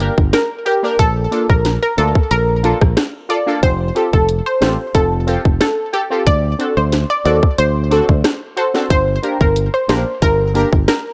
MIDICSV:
0, 0, Header, 1, 5, 480
1, 0, Start_track
1, 0, Key_signature, -2, "minor"
1, 0, Tempo, 659341
1, 722, Time_signature, 4, 2, 24, 8
1, 8104, End_track
2, 0, Start_track
2, 0, Title_t, "Synth pluck"
2, 0, Program_c, 0, 84
2, 0, Note_on_c, 0, 70, 102
2, 107, Note_off_c, 0, 70, 0
2, 243, Note_on_c, 0, 70, 78
2, 351, Note_off_c, 0, 70, 0
2, 482, Note_on_c, 0, 67, 78
2, 590, Note_off_c, 0, 67, 0
2, 722, Note_on_c, 0, 69, 107
2, 830, Note_off_c, 0, 69, 0
2, 1089, Note_on_c, 0, 70, 77
2, 1185, Note_off_c, 0, 70, 0
2, 1329, Note_on_c, 0, 70, 87
2, 1425, Note_off_c, 0, 70, 0
2, 1442, Note_on_c, 0, 69, 86
2, 1550, Note_off_c, 0, 69, 0
2, 1682, Note_on_c, 0, 70, 97
2, 2027, Note_off_c, 0, 70, 0
2, 2402, Note_on_c, 0, 74, 80
2, 2510, Note_off_c, 0, 74, 0
2, 2642, Note_on_c, 0, 72, 107
2, 2750, Note_off_c, 0, 72, 0
2, 3009, Note_on_c, 0, 69, 81
2, 3105, Note_off_c, 0, 69, 0
2, 3249, Note_on_c, 0, 72, 82
2, 3345, Note_off_c, 0, 72, 0
2, 3362, Note_on_c, 0, 72, 74
2, 3470, Note_off_c, 0, 72, 0
2, 3602, Note_on_c, 0, 69, 104
2, 3947, Note_off_c, 0, 69, 0
2, 4083, Note_on_c, 0, 69, 79
2, 4191, Note_off_c, 0, 69, 0
2, 4322, Note_on_c, 0, 67, 78
2, 4430, Note_off_c, 0, 67, 0
2, 4562, Note_on_c, 0, 74, 104
2, 4670, Note_off_c, 0, 74, 0
2, 4928, Note_on_c, 0, 72, 78
2, 5025, Note_off_c, 0, 72, 0
2, 5169, Note_on_c, 0, 74, 90
2, 5265, Note_off_c, 0, 74, 0
2, 5282, Note_on_c, 0, 74, 86
2, 5390, Note_off_c, 0, 74, 0
2, 5522, Note_on_c, 0, 72, 101
2, 5867, Note_off_c, 0, 72, 0
2, 6242, Note_on_c, 0, 72, 82
2, 6350, Note_off_c, 0, 72, 0
2, 6482, Note_on_c, 0, 72, 104
2, 6590, Note_off_c, 0, 72, 0
2, 6849, Note_on_c, 0, 70, 80
2, 6945, Note_off_c, 0, 70, 0
2, 7090, Note_on_c, 0, 72, 81
2, 7186, Note_off_c, 0, 72, 0
2, 7202, Note_on_c, 0, 72, 71
2, 7311, Note_off_c, 0, 72, 0
2, 7442, Note_on_c, 0, 70, 105
2, 7787, Note_off_c, 0, 70, 0
2, 7922, Note_on_c, 0, 70, 75
2, 8030, Note_off_c, 0, 70, 0
2, 8104, End_track
3, 0, Start_track
3, 0, Title_t, "Synth stab"
3, 0, Program_c, 1, 62
3, 0, Note_on_c, 1, 58, 76
3, 0, Note_on_c, 1, 62, 70
3, 4, Note_on_c, 1, 67, 70
3, 8, Note_on_c, 1, 70, 84
3, 101, Note_off_c, 1, 58, 0
3, 103, Note_off_c, 1, 62, 0
3, 105, Note_off_c, 1, 67, 0
3, 107, Note_off_c, 1, 70, 0
3, 477, Note_on_c, 1, 67, 76
3, 489, Note_on_c, 1, 70, 83
3, 530, Note_off_c, 1, 67, 0
3, 536, Note_off_c, 1, 70, 0
3, 604, Note_on_c, 1, 58, 71
3, 608, Note_on_c, 1, 62, 64
3, 612, Note_on_c, 1, 67, 68
3, 616, Note_on_c, 1, 70, 80
3, 697, Note_off_c, 1, 58, 0
3, 699, Note_off_c, 1, 62, 0
3, 701, Note_off_c, 1, 67, 0
3, 703, Note_off_c, 1, 70, 0
3, 956, Note_on_c, 1, 58, 79
3, 960, Note_on_c, 1, 62, 72
3, 965, Note_on_c, 1, 65, 72
3, 969, Note_on_c, 1, 69, 83
3, 1061, Note_off_c, 1, 58, 0
3, 1063, Note_off_c, 1, 62, 0
3, 1065, Note_off_c, 1, 65, 0
3, 1067, Note_off_c, 1, 69, 0
3, 1436, Note_on_c, 1, 58, 76
3, 1440, Note_on_c, 1, 62, 71
3, 1444, Note_on_c, 1, 65, 69
3, 1448, Note_on_c, 1, 69, 81
3, 1541, Note_off_c, 1, 58, 0
3, 1543, Note_off_c, 1, 62, 0
3, 1545, Note_off_c, 1, 65, 0
3, 1547, Note_off_c, 1, 69, 0
3, 1915, Note_on_c, 1, 58, 74
3, 1919, Note_on_c, 1, 62, 72
3, 1924, Note_on_c, 1, 65, 73
3, 1928, Note_on_c, 1, 69, 84
3, 2020, Note_off_c, 1, 58, 0
3, 2022, Note_off_c, 1, 62, 0
3, 2025, Note_off_c, 1, 65, 0
3, 2027, Note_off_c, 1, 69, 0
3, 2395, Note_on_c, 1, 65, 76
3, 2407, Note_on_c, 1, 69, 83
3, 2449, Note_off_c, 1, 65, 0
3, 2456, Note_off_c, 1, 69, 0
3, 2522, Note_on_c, 1, 58, 69
3, 2526, Note_on_c, 1, 62, 68
3, 2531, Note_on_c, 1, 65, 65
3, 2535, Note_on_c, 1, 69, 79
3, 2616, Note_off_c, 1, 58, 0
3, 2618, Note_off_c, 1, 62, 0
3, 2620, Note_off_c, 1, 65, 0
3, 2622, Note_off_c, 1, 69, 0
3, 2875, Note_on_c, 1, 60, 74
3, 2879, Note_on_c, 1, 65, 72
3, 2883, Note_on_c, 1, 67, 71
3, 2887, Note_on_c, 1, 69, 85
3, 2980, Note_off_c, 1, 60, 0
3, 2982, Note_off_c, 1, 65, 0
3, 2984, Note_off_c, 1, 67, 0
3, 2986, Note_off_c, 1, 69, 0
3, 3355, Note_on_c, 1, 60, 77
3, 3359, Note_on_c, 1, 65, 67
3, 3363, Note_on_c, 1, 67, 71
3, 3367, Note_on_c, 1, 69, 82
3, 3460, Note_off_c, 1, 60, 0
3, 3462, Note_off_c, 1, 65, 0
3, 3464, Note_off_c, 1, 67, 0
3, 3466, Note_off_c, 1, 69, 0
3, 3836, Note_on_c, 1, 60, 78
3, 3839, Note_on_c, 1, 65, 69
3, 3844, Note_on_c, 1, 67, 68
3, 3848, Note_on_c, 1, 69, 83
3, 3941, Note_off_c, 1, 60, 0
3, 3942, Note_off_c, 1, 65, 0
3, 3945, Note_off_c, 1, 67, 0
3, 3947, Note_off_c, 1, 69, 0
3, 4315, Note_on_c, 1, 67, 77
3, 4328, Note_on_c, 1, 69, 87
3, 4370, Note_off_c, 1, 67, 0
3, 4376, Note_off_c, 1, 69, 0
3, 4443, Note_on_c, 1, 60, 71
3, 4447, Note_on_c, 1, 65, 66
3, 4451, Note_on_c, 1, 67, 67
3, 4455, Note_on_c, 1, 69, 80
3, 4536, Note_off_c, 1, 60, 0
3, 4538, Note_off_c, 1, 65, 0
3, 4540, Note_off_c, 1, 67, 0
3, 4542, Note_off_c, 1, 69, 0
3, 4795, Note_on_c, 1, 60, 81
3, 4799, Note_on_c, 1, 62, 74
3, 4804, Note_on_c, 1, 66, 74
3, 4807, Note_on_c, 1, 69, 85
3, 4900, Note_off_c, 1, 60, 0
3, 4902, Note_off_c, 1, 62, 0
3, 4905, Note_off_c, 1, 66, 0
3, 4906, Note_off_c, 1, 69, 0
3, 5275, Note_on_c, 1, 60, 76
3, 5280, Note_on_c, 1, 62, 66
3, 5283, Note_on_c, 1, 66, 69
3, 5287, Note_on_c, 1, 69, 83
3, 5380, Note_off_c, 1, 60, 0
3, 5383, Note_off_c, 1, 62, 0
3, 5384, Note_off_c, 1, 66, 0
3, 5386, Note_off_c, 1, 69, 0
3, 5755, Note_on_c, 1, 60, 77
3, 5759, Note_on_c, 1, 62, 71
3, 5763, Note_on_c, 1, 66, 70
3, 5768, Note_on_c, 1, 69, 83
3, 5860, Note_off_c, 1, 60, 0
3, 5862, Note_off_c, 1, 62, 0
3, 5864, Note_off_c, 1, 66, 0
3, 5867, Note_off_c, 1, 69, 0
3, 6235, Note_on_c, 1, 66, 78
3, 6247, Note_on_c, 1, 69, 87
3, 6289, Note_off_c, 1, 66, 0
3, 6296, Note_off_c, 1, 69, 0
3, 6363, Note_on_c, 1, 60, 70
3, 6367, Note_on_c, 1, 62, 64
3, 6371, Note_on_c, 1, 66, 63
3, 6375, Note_on_c, 1, 69, 77
3, 6456, Note_off_c, 1, 60, 0
3, 6458, Note_off_c, 1, 62, 0
3, 6460, Note_off_c, 1, 66, 0
3, 6462, Note_off_c, 1, 69, 0
3, 6715, Note_on_c, 1, 58, 81
3, 6719, Note_on_c, 1, 62, 72
3, 6723, Note_on_c, 1, 67, 70
3, 6727, Note_on_c, 1, 70, 86
3, 6820, Note_off_c, 1, 58, 0
3, 6822, Note_off_c, 1, 62, 0
3, 6824, Note_off_c, 1, 67, 0
3, 6826, Note_off_c, 1, 70, 0
3, 7195, Note_on_c, 1, 58, 79
3, 7199, Note_on_c, 1, 62, 70
3, 7203, Note_on_c, 1, 67, 73
3, 7207, Note_on_c, 1, 70, 85
3, 7300, Note_off_c, 1, 58, 0
3, 7302, Note_off_c, 1, 62, 0
3, 7304, Note_off_c, 1, 67, 0
3, 7306, Note_off_c, 1, 70, 0
3, 7675, Note_on_c, 1, 58, 75
3, 7680, Note_on_c, 1, 62, 73
3, 7684, Note_on_c, 1, 67, 68
3, 7688, Note_on_c, 1, 70, 85
3, 7780, Note_off_c, 1, 58, 0
3, 7782, Note_off_c, 1, 62, 0
3, 7784, Note_off_c, 1, 67, 0
3, 7787, Note_off_c, 1, 70, 0
3, 8104, End_track
4, 0, Start_track
4, 0, Title_t, "Fingered electric bass"
4, 0, Program_c, 2, 33
4, 129, Note_on_c, 2, 31, 97
4, 222, Note_off_c, 2, 31, 0
4, 722, Note_on_c, 2, 34, 103
4, 918, Note_off_c, 2, 34, 0
4, 1089, Note_on_c, 2, 34, 92
4, 1285, Note_off_c, 2, 34, 0
4, 1442, Note_on_c, 2, 38, 85
4, 1546, Note_off_c, 2, 38, 0
4, 1682, Note_on_c, 2, 34, 97
4, 1982, Note_off_c, 2, 34, 0
4, 2049, Note_on_c, 2, 34, 87
4, 2141, Note_off_c, 2, 34, 0
4, 2642, Note_on_c, 2, 29, 108
4, 2838, Note_off_c, 2, 29, 0
4, 3009, Note_on_c, 2, 29, 90
4, 3205, Note_off_c, 2, 29, 0
4, 3362, Note_on_c, 2, 33, 91
4, 3466, Note_off_c, 2, 33, 0
4, 3601, Note_on_c, 2, 29, 106
4, 3902, Note_off_c, 2, 29, 0
4, 3969, Note_on_c, 2, 29, 80
4, 4062, Note_off_c, 2, 29, 0
4, 4562, Note_on_c, 2, 38, 112
4, 4758, Note_off_c, 2, 38, 0
4, 4929, Note_on_c, 2, 38, 93
4, 5125, Note_off_c, 2, 38, 0
4, 5282, Note_on_c, 2, 39, 91
4, 5386, Note_off_c, 2, 39, 0
4, 5522, Note_on_c, 2, 38, 101
4, 5822, Note_off_c, 2, 38, 0
4, 5889, Note_on_c, 2, 38, 93
4, 5981, Note_off_c, 2, 38, 0
4, 6482, Note_on_c, 2, 31, 102
4, 6678, Note_off_c, 2, 31, 0
4, 6849, Note_on_c, 2, 31, 93
4, 7045, Note_off_c, 2, 31, 0
4, 7202, Note_on_c, 2, 34, 94
4, 7306, Note_off_c, 2, 34, 0
4, 7441, Note_on_c, 2, 31, 113
4, 7742, Note_off_c, 2, 31, 0
4, 7809, Note_on_c, 2, 31, 93
4, 7901, Note_off_c, 2, 31, 0
4, 8104, End_track
5, 0, Start_track
5, 0, Title_t, "Drums"
5, 2, Note_on_c, 9, 42, 57
5, 75, Note_off_c, 9, 42, 0
5, 129, Note_on_c, 9, 36, 105
5, 202, Note_off_c, 9, 36, 0
5, 241, Note_on_c, 9, 38, 106
5, 243, Note_on_c, 9, 42, 80
5, 245, Note_on_c, 9, 37, 86
5, 314, Note_off_c, 9, 38, 0
5, 316, Note_off_c, 9, 42, 0
5, 317, Note_off_c, 9, 37, 0
5, 481, Note_on_c, 9, 42, 51
5, 554, Note_off_c, 9, 42, 0
5, 722, Note_on_c, 9, 36, 122
5, 722, Note_on_c, 9, 42, 81
5, 795, Note_off_c, 9, 36, 0
5, 795, Note_off_c, 9, 42, 0
5, 962, Note_on_c, 9, 42, 53
5, 1035, Note_off_c, 9, 42, 0
5, 1089, Note_on_c, 9, 36, 97
5, 1162, Note_off_c, 9, 36, 0
5, 1201, Note_on_c, 9, 42, 76
5, 1203, Note_on_c, 9, 38, 68
5, 1273, Note_off_c, 9, 42, 0
5, 1275, Note_off_c, 9, 38, 0
5, 1441, Note_on_c, 9, 42, 57
5, 1514, Note_off_c, 9, 42, 0
5, 1568, Note_on_c, 9, 36, 100
5, 1641, Note_off_c, 9, 36, 0
5, 1681, Note_on_c, 9, 42, 70
5, 1753, Note_off_c, 9, 42, 0
5, 1922, Note_on_c, 9, 42, 57
5, 1995, Note_off_c, 9, 42, 0
5, 2049, Note_on_c, 9, 36, 103
5, 2050, Note_on_c, 9, 37, 98
5, 2122, Note_off_c, 9, 36, 0
5, 2123, Note_off_c, 9, 37, 0
5, 2161, Note_on_c, 9, 38, 107
5, 2163, Note_on_c, 9, 42, 78
5, 2165, Note_on_c, 9, 37, 83
5, 2234, Note_off_c, 9, 38, 0
5, 2236, Note_off_c, 9, 42, 0
5, 2237, Note_off_c, 9, 37, 0
5, 2401, Note_on_c, 9, 42, 52
5, 2474, Note_off_c, 9, 42, 0
5, 2642, Note_on_c, 9, 36, 123
5, 2642, Note_on_c, 9, 42, 79
5, 2714, Note_off_c, 9, 42, 0
5, 2715, Note_off_c, 9, 36, 0
5, 2883, Note_on_c, 9, 42, 54
5, 2956, Note_off_c, 9, 42, 0
5, 3009, Note_on_c, 9, 36, 96
5, 3082, Note_off_c, 9, 36, 0
5, 3121, Note_on_c, 9, 42, 72
5, 3193, Note_off_c, 9, 42, 0
5, 3361, Note_on_c, 9, 42, 59
5, 3363, Note_on_c, 9, 38, 113
5, 3366, Note_on_c, 9, 37, 86
5, 3434, Note_off_c, 9, 42, 0
5, 3436, Note_off_c, 9, 38, 0
5, 3439, Note_off_c, 9, 37, 0
5, 3601, Note_on_c, 9, 36, 90
5, 3601, Note_on_c, 9, 42, 75
5, 3673, Note_off_c, 9, 42, 0
5, 3674, Note_off_c, 9, 36, 0
5, 3842, Note_on_c, 9, 42, 57
5, 3915, Note_off_c, 9, 42, 0
5, 3969, Note_on_c, 9, 36, 99
5, 4042, Note_off_c, 9, 36, 0
5, 4082, Note_on_c, 9, 38, 107
5, 4083, Note_on_c, 9, 42, 81
5, 4085, Note_on_c, 9, 37, 89
5, 4154, Note_off_c, 9, 38, 0
5, 4156, Note_off_c, 9, 42, 0
5, 4158, Note_off_c, 9, 37, 0
5, 4321, Note_on_c, 9, 42, 51
5, 4394, Note_off_c, 9, 42, 0
5, 4561, Note_on_c, 9, 42, 79
5, 4562, Note_on_c, 9, 36, 118
5, 4634, Note_off_c, 9, 42, 0
5, 4635, Note_off_c, 9, 36, 0
5, 4802, Note_on_c, 9, 42, 52
5, 4875, Note_off_c, 9, 42, 0
5, 5041, Note_on_c, 9, 42, 76
5, 5043, Note_on_c, 9, 38, 71
5, 5114, Note_off_c, 9, 42, 0
5, 5115, Note_off_c, 9, 38, 0
5, 5281, Note_on_c, 9, 42, 58
5, 5354, Note_off_c, 9, 42, 0
5, 5408, Note_on_c, 9, 36, 100
5, 5481, Note_off_c, 9, 36, 0
5, 5521, Note_on_c, 9, 42, 75
5, 5594, Note_off_c, 9, 42, 0
5, 5762, Note_on_c, 9, 42, 58
5, 5835, Note_off_c, 9, 42, 0
5, 5889, Note_on_c, 9, 36, 106
5, 5962, Note_off_c, 9, 36, 0
5, 6001, Note_on_c, 9, 38, 107
5, 6003, Note_on_c, 9, 42, 83
5, 6004, Note_on_c, 9, 37, 85
5, 6074, Note_off_c, 9, 38, 0
5, 6075, Note_off_c, 9, 42, 0
5, 6077, Note_off_c, 9, 37, 0
5, 6241, Note_on_c, 9, 42, 52
5, 6314, Note_off_c, 9, 42, 0
5, 6367, Note_on_c, 9, 38, 67
5, 6440, Note_off_c, 9, 38, 0
5, 6481, Note_on_c, 9, 42, 80
5, 6482, Note_on_c, 9, 36, 121
5, 6554, Note_off_c, 9, 42, 0
5, 6555, Note_off_c, 9, 36, 0
5, 6722, Note_on_c, 9, 42, 55
5, 6795, Note_off_c, 9, 42, 0
5, 6849, Note_on_c, 9, 36, 96
5, 6921, Note_off_c, 9, 36, 0
5, 6960, Note_on_c, 9, 42, 76
5, 7033, Note_off_c, 9, 42, 0
5, 7201, Note_on_c, 9, 42, 62
5, 7203, Note_on_c, 9, 38, 110
5, 7206, Note_on_c, 9, 37, 88
5, 7274, Note_off_c, 9, 42, 0
5, 7276, Note_off_c, 9, 38, 0
5, 7279, Note_off_c, 9, 37, 0
5, 7440, Note_on_c, 9, 42, 72
5, 7441, Note_on_c, 9, 36, 94
5, 7513, Note_off_c, 9, 42, 0
5, 7514, Note_off_c, 9, 36, 0
5, 7682, Note_on_c, 9, 42, 56
5, 7754, Note_off_c, 9, 42, 0
5, 7809, Note_on_c, 9, 36, 104
5, 7882, Note_off_c, 9, 36, 0
5, 7921, Note_on_c, 9, 38, 107
5, 7922, Note_on_c, 9, 42, 77
5, 7924, Note_on_c, 9, 37, 86
5, 7994, Note_off_c, 9, 38, 0
5, 7995, Note_off_c, 9, 42, 0
5, 7997, Note_off_c, 9, 37, 0
5, 8104, End_track
0, 0, End_of_file